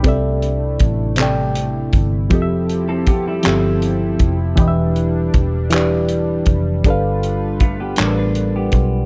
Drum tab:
HH |xxxxxx|xxxxxx|xxxxxx|xxxxxx|
CP |---x--|---x--|---x--|---x--|
BD |o-o--o|o-o--o|o-o--o|o-o--o|